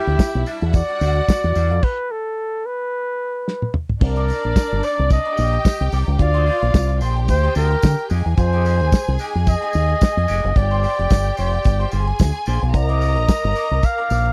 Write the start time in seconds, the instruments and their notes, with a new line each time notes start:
Already playing: string section E4 E5, flugelhorn G4
0.07 fingered electric bass D2, muted clean electric guitar stroke, closed hi-hat
0.19 kick, snare, closed hi-hat, tambourine
0.34 fingered electric bass B1, muted clean electric guitar stroke, closed hi-hat
0.46 clean electric guitar G3 D4 F#4, open hi-hat, tambourine
0.62 fingered electric bass E2, muted clean electric guitar stroke, closed hi-hat
0.73 string section F#4 F#5, flugelhorn D5, muted clean electric guitar stroke, kick, closed hi-hat, tambourine
0.88 clean electric guitar G3 D4 F#4, closed hi-hat
1.01 fingered electric bass D2, clean electric guitar G3 D4 F#4, open hi-hat, tambourine
1.16 muted clean electric guitar stroke, closed hi-hat
1.28 muted clean electric guitar stroke, kick, snare, closed hi-hat, tambourine
1.44 fingered electric bass E2, muted clean electric guitar stroke, closed hi-hat
1.55 fingered electric bass E2, clean electric guitar G3 D4 F#4, open hi-hat, tambourine
1.71 fingered electric bass F2, muted clean electric guitar stroke, closed hi-hat
1.83 flugelhorn B4, kick, crash
2.11 flugelhorn A4
2.66 flugelhorn B4
3.48 snare
3.62 high tom
3.74 mid tom
3.89 floor tom
4.01 fingered electric bass C2, string section D4 D5, flugelhorn A#4, muted clean electric guitar stroke, kick, crash
4.16 clean electric guitar D#4 A#4 D5, closed hi-hat
4.28 clean electric guitar D#4 A#4 D5, open hi-hat, tambourine
4.44 fingered electric bass A#1, muted clean electric guitar stroke, closed hi-hat
4.56 kick, snare, closed hi-hat, tambourine
4.71 fingered electric bass G1, muted clean electric guitar stroke, closed hi-hat
4.83 clean electric guitar D#4 A#4 D5, flugelhorn D5, open hi-hat, tambourine
4.98 fingered electric bass C2, muted clean electric guitar stroke, closed hi-hat
5.10 flugelhorn D#5, muted clean electric guitar stroke, kick, closed hi-hat, tambourine
5.25 clean electric guitar D#4 A#4 D5, closed hi-hat
5.37 fingered electric bass A#1, clean electric guitar D#4 A#4 D5, string section G4 G5, open hi-hat, tambourine
5.53 muted clean electric guitar stroke, closed hi-hat
5.65 muted clean electric guitar stroke, kick, snare, closed hi-hat, tambourine
5.80 fingered electric bass C2, muted clean electric guitar stroke, closed hi-hat
5.92 fingered electric bass C2, clean electric guitar D#4 A#4 D5, open hi-hat, tambourine
6.07 fingered electric bass C#2, muted clean electric guitar stroke, closed hi-hat
6.19 fingered electric bass D2, string section F4 F5, flugelhorn D5, muted clean electric guitar stroke, kick, closed hi-hat
6.34 clean electric guitar D4 G#4 C5, closed hi-hat
6.46 clean electric guitar D4 G#4 C5, open hi-hat
6.62 fingered electric bass A#1, muted clean electric guitar stroke, closed hi-hat
6.74 fingered electric bass C2, kick, snare, closed hi-hat, tambourine
6.89 muted clean electric guitar stroke, closed hi-hat
7.01 fingered electric bass A#1, clean electric guitar D4 G#4 C5, string section G4 G5, open hi-hat, tambourine
7.17 muted clean electric guitar stroke, closed hi-hat
7.28 fingered electric bass D2, flugelhorn C5, muted clean electric guitar stroke, kick, closed hi-hat, tambourine
7.43 clean electric guitar D4 G#4 C5, closed hi-hat
7.55 fingered electric bass D2, clean electric guitar D4 G#4 C5, flugelhorn A#4, open hi-hat, tambourine
7.71 muted clean electric guitar stroke, closed hi-hat
7.82 fingered electric bass D3, muted clean electric guitar stroke, kick, snare, closed hi-hat, tambourine
7.98 muted clean electric guitar stroke, closed hi-hat
8.10 fingered electric bass F2, clean electric guitar G#3 D#4 G4, string section G#4 G#5, open hi-hat, tambourine
8.26 fingered electric bass E2, muted clean electric guitar stroke, closed hi-hat
8.37 fingered electric bass F2, flugelhorn C5, muted clean electric guitar stroke, kick, closed hi-hat, tambourine
8.53 clean electric guitar G#3 D#4 G4, closed hi-hat
8.64 clean electric guitar G#3 D#4 G4, open hi-hat, tambourine
8.80 fingered electric bass D#2, muted clean electric guitar stroke, closed hi-hat
8.92 kick, snare, closed hi-hat, tambourine
9.07 fingered electric bass C2, muted clean electric guitar stroke, closed hi-hat
9.19 clean electric guitar G#3 D#4 G4, open hi-hat, tambourine
9.34 fingered electric bass F2, muted clean electric guitar stroke, closed hi-hat
9.46 flugelhorn D#5, muted clean electric guitar stroke, kick, closed hi-hat, tambourine
9.61 clean electric guitar G#3 D#4 G4, closed hi-hat
9.73 fingered electric bass D#2, muted clean electric guitar stroke, open hi-hat, tambourine
9.89 muted clean electric guitar stroke, closed hi-hat
10.01 muted clean electric guitar stroke, kick, snare, closed hi-hat, tambourine
10.17 fingered electric bass F2, muted clean electric guitar stroke, closed hi-hat
10.28 fingered electric bass F1, clean electric guitar G#3 D#4 G4, open hi-hat, tambourine
10.44 fingered electric bass F#1, muted clean electric guitar stroke, closed hi-hat
10.56 fingered electric bass G1, string section G4 G5, flugelhorn D5, muted clean electric guitar stroke, kick, closed hi-hat
10.71 clean electric guitar F4 G4 C5, closed hi-hat
10.83 clean electric guitar F4 G4 C5, open hi-hat, tambourine
10.98 fingered electric bass F1, muted clean electric guitar stroke, closed hi-hat
11.10 fingered electric bass G1, kick, snare, closed hi-hat, tambourine
11.26 muted clean electric guitar stroke, closed hi-hat
11.37 fingered electric bass F1, clean electric guitar F4 G4 C5, flugelhorn D5, open hi-hat, tambourine
11.53 muted clean electric guitar stroke, closed hi-hat
11.64 fingered electric bass G1, muted clean electric guitar stroke, kick, closed hi-hat, tambourine
11.79 clean electric guitar F4 G4 C5, closed hi-hat
11.91 fingered electric bass G1, clean electric guitar F4 G4 C5, string section G#4 G#5, open hi-hat, tambourine
12.07 muted clean electric guitar stroke, closed hi-hat
12.19 fingered electric bass D2, muted clean electric guitar stroke, kick, snare, closed hi-hat, tambourine
12.34 muted clean electric guitar stroke, closed hi-hat
12.46 fingered electric bass A#1, clean electric guitar F4 G4 C5, open hi-hat, tambourine
12.62 fingered electric bass B1, muted clean electric guitar stroke, closed hi-hat
12.74 fingered electric bass C2, string section A#4 A#5, flugelhorn D#5, muted clean electric guitar stroke, kick, closed hi-hat, tambourine
12.89 clean electric guitar D#4 A#4 D5, closed hi-hat
13.00 clean electric guitar D#4 A#4 D5, open hi-hat, tambourine
13.16 fingered electric bass A#1, muted clean electric guitar stroke, closed hi-hat
13.29 kick, snare, closed hi-hat, tambourine
13.44 fingered electric bass G1, muted clean electric guitar stroke, closed hi-hat
13.55 clean electric guitar D#4 A#4 D5, open hi-hat, tambourine
13.71 fingered electric bass C2, muted clean electric guitar stroke, closed hi-hat
13.83 flugelhorn F5, muted clean electric guitar stroke, kick, closed hi-hat, tambourine
13.98 clean electric guitar D#4 A#4 D5, closed hi-hat
14.10 fingered electric bass A#1, clean electric guitar D#4 A#4 D5, open hi-hat, tambourine
14.26 muted clean electric guitar stroke, closed hi-hat